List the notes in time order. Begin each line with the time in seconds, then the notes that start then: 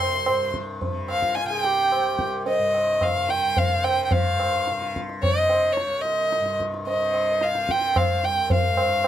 Already playing: C2 G2 C3 C5 C6
0.26 G2, tabla na
0.54 tabla ke
0.81 tabla tin, tabla ge
0.86 C3
1.08 F5, tabla na
1.22 F4, tabla ke
1.35 G#5, tabla te
1.44 C3
1.48 G#4 G5
1.64 G4, tabla te
1.92 tabla na
2.00 C2
2.19 tabla ke
2.46 D#5, tabla tin
2.58 G2
2.74 tabla na
3.01 F5, tabla na, tabla ge
3.16 C3
3.29 G5, tabla te
3.57 F5, tabla tin, tabla ge
3.76 C3
3.84 G5, tabla na
4.05 G5
4.11 G2 F5, tabla tin, tabla ge
4.40 tabla na
4.67 C3, tabla te
4.82 tabla te
4.96 tabla ke
5.09 tabla te
5.23 D#5, tabla tin, tabla ge
5.27 C3
5.50 tabla na
5.73 C#5
5.77 tabla te
5.84 C2
6.01 D#5
6.05 tabla te
6.32 tabla te
6.39 G2
6.46 tabla te
6.60 tabla ke
6.74 tabla te
6.87 D#5, tabla tin
6.96 C3
7.14 tabla na
7.41 F5, tabla te
7.53 C3, tabla te
7.69 G5, tabla ke
7.81 tabla te
7.96 F5, tabla na, tabla ge
8.11 C2
8.24 G5, tabla te
8.50 F5, tabla tin, tabla ge
8.68 G2
8.77 tabla na
9.04 tabla na